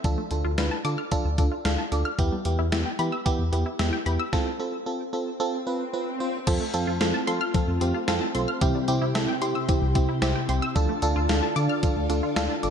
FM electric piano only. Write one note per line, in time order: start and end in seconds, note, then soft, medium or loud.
0.05 0.21 D4 loud
0.05 0.21 F4 medium
0.05 0.21 A4 loud
0.31 0.48 D4 medium
0.31 0.48 F4 medium
0.31 0.48 A4 medium
0.58 0.75 D4 medium
0.58 0.75 F4 medium
0.58 0.75 B4 medium
0.85 1.01 D4 medium
0.85 1.01 F4 medium
0.85 1.01 A4 medium
1.12 1.28 D4 loud
1.12 1.28 F4 loud
1.12 1.28 A4 loud
1.38 1.55 D4 medium
1.38 1.55 F4 medium
1.38 1.55 A4 medium
1.65 1.82 D4 medium
1.65 1.82 F4 medium
1.65 1.82 A4 medium
1.92 2.09 D4 medium
1.92 2.09 F4 medium
1.92 2.09 A4 medium
2.19 2.35 B3 loud
2.19 2.35 E4 medium
2.19 2.35 G4 loud
2.45 2.62 B3 medium
2.45 2.62 E4 medium
2.45 2.62 G4 medium
2.72 2.89 B3 medium
2.72 2.89 E4 medium
2.72 2.89 G4 medium
2.99 3.16 B3 medium
2.99 3.16 E4 medium
2.99 3.16 G4 medium
3.26 3.42 B3 loud
3.26 3.42 E4 medium
3.26 3.42 G4 loud
3.52 3.69 B3 medium
3.52 3.69 E4 medium
3.52 3.69 G4 medium
3.79 3.96 B3 medium
3.79 3.96 E4 medium
3.79 3.96 G4 medium
4.06 4.23 B3 medium
4.06 4.23 E4 medium
4.06 4.23 G4 medium
4.33 4.50 C4 loud
4.33 4.50 F4 medium
4.33 4.50 A4 loud
4.60 4.76 C4 medium
4.60 4.76 F4 medium
4.60 4.76 A4 medium
4.86 5.03 C4 medium
4.86 5.03 F4 medium
4.86 5.03 A4 medium
5.13 5.30 C4 medium
5.13 5.30 F4 medium
5.13 5.30 A4 medium
5.40 5.57 C4 loud
5.40 5.57 F4 medium
5.40 5.57 A4 loud
5.67 5.83 C4 medium
5.67 5.83 F4 medium
5.67 5.83 B4 medium
5.93 6.10 C4 medium
5.93 6.10 F4 medium
5.93 6.10 B4 medium
6.20 6.37 C4 medium
6.20 6.37 F4 medium
6.20 6.37 C5 medium
6.47 6.64 C4 loud
6.47 6.64 F4 medium
6.47 6.64 A4 loud
6.74 6.91 C4 loud
6.74 6.91 F4 loud
6.74 6.91 A4 loud
7.01 7.17 C4 medium
7.01 7.17 F4 medium
7.01 7.17 A4 medium
7.27 7.44 C4 medium
7.27 7.44 F4 medium
7.27 7.44 A4 medium
7.54 7.71 C4 medium
7.54 7.71 F4 medium
7.54 7.71 A4 medium
7.81 7.98 C4 medium
7.81 7.98 F4 medium
7.81 7.98 G4 medium
8.08 8.25 C4 loud
8.08 8.25 F4 loud
8.08 8.25 A4 loud
8.35 8.51 C4 medium
8.35 8.51 F4 medium
8.35 8.51 A4 medium
8.61 8.78 C4 loud
8.61 8.78 E4 loud
8.61 8.78 G4 loud
8.88 9.05 C4 loud
8.88 9.05 E4 loud
8.88 9.05 G4 loud
9.15 9.32 C4 medium
9.15 9.32 E4 medium
9.15 9.32 A4 medium
9.42 9.59 C4 medium
9.42 9.58 E4 medium
9.42 9.59 G4 medium
9.69 9.85 C4 medium
9.69 9.85 E4 medium
9.69 9.85 G4 medium
9.95 10.12 C4 medium
9.95 10.12 E4 medium
9.95 10.12 G4 medium
10.22 10.39 C4 loud
10.22 10.39 E4 loud
10.22 10.39 G4 loud
10.49 10.66 C4 medium
10.49 10.66 E4 medium
10.49 10.66 G4 medium
10.76 10.92 D4 loud
10.76 10.92 F4 medium
10.76 10.92 A4 loud
11.02 11.19 D4 loud
11.02 11.19 F4 loud
11.02 11.19 A4 loud
11.29 11.46 D4 medium
11.29 11.46 F4 medium
11.29 11.46 A4 loud
11.56 11.73 D4 medium
11.56 11.73 F4 medium
11.56 11.73 A4 medium
11.83 12.00 D4 medium
11.83 12.00 F4 medium
11.83 12.00 A4 medium
12.10 12.26 D4 medium
12.10 12.26 F4 medium
12.10 12.26 A4 medium
12.36 12.53 D4 loud
12.36 12.53 F4 loud
12.36 12.53 A4 loud
12.63 12.70 D4 medium
12.63 12.70 F4 medium
12.63 12.70 A4 medium